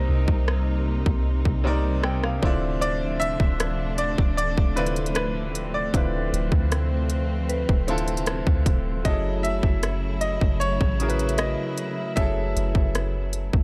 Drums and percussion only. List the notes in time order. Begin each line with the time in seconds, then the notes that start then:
0.28 kick
0.48 cross-stick
1.06 kick
1.45 kick
2.04 cross-stick
2.24 cross-stick
2.43 kick
2.82 closed hi-hat
3.21 closed hi-hat
3.40 kick
3.60 cross-stick, closed hi-hat
3.98 closed hi-hat
4.18 kick
4.38 closed hi-hat
4.58 kick
4.77 closed hi-hat
4.86 closed hi-hat
4.96 closed hi-hat
5.06 closed hi-hat
5.15 cross-stick, closed hi-hat
5.55 closed hi-hat
5.94 kick, closed hi-hat
6.34 closed hi-hat
6.52 kick
6.72 cross-stick, closed hi-hat
7.10 closed hi-hat
7.50 closed hi-hat
7.69 kick
7.88 closed hi-hat
7.98 closed hi-hat
8.08 closed hi-hat
8.17 closed hi-hat
8.26 cross-stick, closed hi-hat
8.47 kick
8.66 kick, closed hi-hat
9.05 kick, closed hi-hat
9.45 closed hi-hat
9.63 kick
9.83 cross-stick, closed hi-hat
10.21 closed hi-hat
10.41 kick
10.61 closed hi-hat
10.81 kick
11.00 closed hi-hat
11.10 closed hi-hat
11.19 closed hi-hat
11.29 closed hi-hat
11.38 cross-stick, closed hi-hat
11.78 closed hi-hat
12.17 kick, closed hi-hat
12.57 closed hi-hat
12.75 kick
12.95 cross-stick, closed hi-hat
13.33 closed hi-hat
13.53 kick